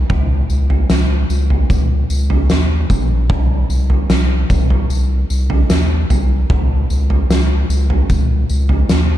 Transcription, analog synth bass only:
0.10 C#2
0.50 C#2
0.90 C#2
1.30 C#2
1.70 C#2
2.10 C#2
2.51 D#2
2.90 A#1
3.30 C2
3.70 C2
4.10 C2
4.50 C2
4.90 C2
5.30 C2
5.70 D#2
6.10 C2
6.50 C#2
6.90 C#2
7.30 C#2
7.69 C#2
8.10 C#2
8.50 C#2
8.91 D#2

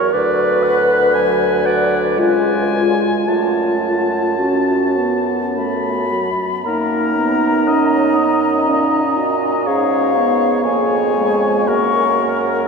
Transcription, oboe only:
Already playing: C#5
0.12 D5
0.63 F#5
1.14 G#5
1.66 F#5
2.20 G#5
3.28 A5
6.66 A#4
7.68 D#5
9.66 C#5
10.64 C#5
11.68 A#4

